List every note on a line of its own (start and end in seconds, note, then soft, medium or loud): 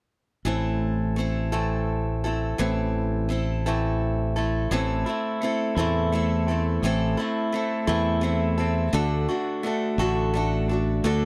0.45 2.54 A1 medium
0.45 1.16 A2 medium
0.45 1.53 E3 medium
0.45 1.16 A3 medium
0.45 1.18 C4 medium
0.45 1.18 E4 medium
0.45 1.20 A4 medium
1.16 1.52 A3 soft
1.16 1.52 C4 medium
1.16 1.51 E4 medium
1.16 1.51 A4 medium
1.52 2.24 A2 soft
1.52 2.58 E3 soft
1.52 2.27 A3 medium
1.52 2.26 C4 medium
1.52 2.24 E4 medium
1.52 2.24 A4 medium
2.24 2.58 A3 soft
2.24 2.58 C4 soft
2.24 2.59 E4 soft
2.24 2.59 A4 soft
2.58 4.66 A1 medium
2.58 3.29 A2 medium
2.58 3.29 E3 medium
2.58 3.27 A3 medium
2.58 3.29 C4 medium
2.58 3.30 E4 medium
2.58 3.30 A4 medium
3.29 3.64 A3 medium
3.29 3.65 C4 medium
3.29 3.65 E4 medium
3.29 3.65 A4 medium
3.66 4.37 A2 medium
3.66 4.37 E3 medium
3.66 4.36 A3 medium
3.66 4.36 C4 medium
3.66 4.35 E4 medium
3.66 4.35 A4 medium
4.36 4.71 A3 soft
4.36 4.71 C4 soft
4.36 4.71 E4 soft
4.36 4.70 A4 soft
4.71 5.03 A1 medium
4.71 5.06 A2 medium
4.71 5.06 E3 medium
4.71 5.06 A3 medium
4.71 5.06 C4 medium
4.71 5.06 E4 medium
4.71 5.05 A4 medium
5.06 5.40 A3 soft
5.06 5.42 C4 soft
5.06 5.41 E4 soft
5.06 5.41 A4 medium
5.42 5.76 A3 soft
5.42 5.77 C4 medium
5.42 5.78 E4 medium
5.42 5.76 A4 medium
5.76 6.78 E2 medium
5.76 6.13 A2 medium
5.76 6.13 E3 medium
5.76 6.11 A3 medium
5.76 6.12 C4 medium
5.76 6.12 E4 medium
5.76 6.12 A4 medium
6.12 6.47 A3 medium
6.12 6.47 C4 medium
6.12 6.48 E4 medium
6.12 6.47 A4 medium
6.48 6.83 A3 soft
6.48 6.83 C4 soft
6.48 6.83 E4 soft
6.48 6.82 A4 soft
6.83 7.15 A1 medium
6.83 7.17 A2 medium
6.83 7.18 E3 medium
6.83 7.18 A3 medium
6.83 7.18 C4 medium
6.83 7.18 E4 medium
6.83 7.16 A4 medium
7.17 7.53 C4 soft
7.17 7.53 E4 soft
7.17 7.52 A4 medium
7.21 7.51 A3 soft
7.52 7.87 A3 medium
7.52 7.87 C4 medium
7.52 7.86 E4 medium
7.52 7.86 A4 medium
7.87 8.89 E2 medium
7.87 8.23 A2 medium
7.87 8.23 E3 medium
7.87 8.20 A3 medium
7.87 8.22 C4 medium
7.87 8.22 E4 medium
7.87 8.22 A4 medium
8.21 8.57 A3 medium
8.21 8.58 C4 medium
8.21 8.58 E4 medium
8.21 8.56 A4 medium
8.58 8.92 A3 soft
8.58 8.94 C4 soft
8.58 8.93 E4 soft
8.58 8.93 A4 medium
8.93 9.26 D2 medium
8.93 9.28 D3 medium
8.93 9.28 A3 medium
8.93 9.28 D4 medium
8.93 9.28 F#4 medium
8.93 9.27 A4 medium
9.29 9.63 D4 soft
9.29 9.64 F#4 soft
9.29 9.63 A4 soft
9.63 9.98 A3 medium
9.63 9.99 D4 medium
9.63 9.99 F#4 medium
9.63 9.98 A4 medium
9.98 10.99 A1 medium
9.98 10.35 D3 medium
9.98 10.32 A3 medium
9.98 10.34 D4 medium
9.98 10.34 F#4 medium
9.98 10.34 A4 medium
10.34 10.68 A3 medium
10.34 10.69 D4 medium
10.34 10.70 F#4 medium
10.34 10.68 A4 medium
10.68 11.25 D4 medium
10.68 11.04 F#4 soft
10.68 11.04 A4 soft
10.73 11.04 D4 soft
11.04 11.25 D2 medium
11.04 11.25 D3 medium
11.04 11.25 A3 medium
11.04 11.25 D4 medium
11.04 11.25 F#4 medium
11.04 11.25 A4 medium